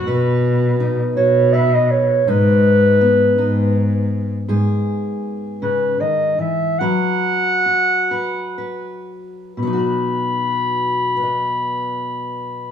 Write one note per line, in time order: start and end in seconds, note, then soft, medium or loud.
0.00 2.27 F#3 medium
0.05 0.98 B2 medium
0.05 2.23 B2 medium
0.05 1.53 B4 medium
0.80 2.28 D#4 soft
1.16 2.10 B2 medium
1.16 2.22 F#4 medium
1.16 1.54 C#5 medium
1.53 4.48 B4 medium
1.53 1.76 E5 medium
1.74 1.93 D#5 medium
1.91 2.31 C#5 medium
2.27 3.20 G#2 medium
2.27 4.47 G#2 medium
2.27 3.38 D#4 medium
2.27 4.12 B4 medium
3.01 5.65 B3 soft
3.38 4.31 G#2 medium
3.38 3.74 D#4 soft
4.48 6.80 G#2 medium
4.48 6.80 G#4 medium
5.62 6.00 C#3 medium
5.62 6.02 B4 medium
6.00 6.38 D#3 soft
6.00 6.39 D#5 medium
6.39 6.79 E3 soft
6.39 6.81 E5 medium
6.79 9.61 F#3 medium
6.79 8.10 B4 medium
6.79 9.06 F#5 loud
7.66 9.52 F#4 soft
8.11 8.57 B4 medium
8.58 9.52 B4 soft
9.57 12.71 B2 medium
9.57 12.71 B5 medium
9.63 12.71 F#3 soft
9.67 11.16 D#4 soft
9.73 11.23 F#4 soft
9.78 11.17 B4 soft
11.17 12.71 B4 soft
11.23 12.71 D#5 soft